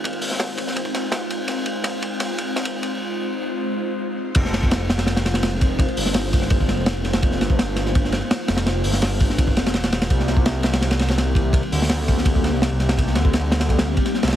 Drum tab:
CC |--------------------------------|--------------------------------|--------------------------------|x-------------------------------|
RD |x-x-----x---x---x---x---x---x---|x---x---x---x---x---x---x-x---x-|--------------------------------|x---x---x---x-x-x-x-x-x-x---x---|
HH |----o---------------------------|--------------------------------|--------------------------------|--------------------------------|
SD |------o-o-----o-----o---o-------|o-------o-------o-------o-------|--------------------------------|--o-o---o---o-o-o-o-o-o-o-------|
BD |o-----------o---o-o-------------|--------------------------------|--------------------------------|o-----o---------------------o---|

CC |--------------------------------|--------------------------------|--------------------------------|--------------------------------|
RD |x-x-----x---x---x---x---x---x-x-|x---x---x---x---x---x---x---x-x-|x-------x---x---x---x-x-x-x-x-x-|x---x---x---x-x-x-x-x-x-x---x---|
HH |----o---------------------------|--------------------------------|----o---------------------------|--------------------------------|
SD |------o-o-----o-----o---o---o-o-|--o-o---o---o-o---o-o---o---o-o-|o-----o-o-----o-----o-o-o-o-o-o-|--o-o---o---o-o-o-o-o-o-o-------|
BD |o-----------o---o-o-------------|o-----o---------o---------------|------------o---o-o-------------|o-----o---------------------o---|

CC |--------------------------------|--------------------------------|
RD |x-x-----x---x---x---x---x---x-x-|x---x---x---x-x-x-x---x-x---xxx-|
HH |----o---------------------------|--------------------------------|
SD |------o-o-----o-----o---o---o-o-|--o-o---o---o-o---o-----o-o-ooo-|
BD |o-----------o---o-o-------------|o-----o---------o-----o---------|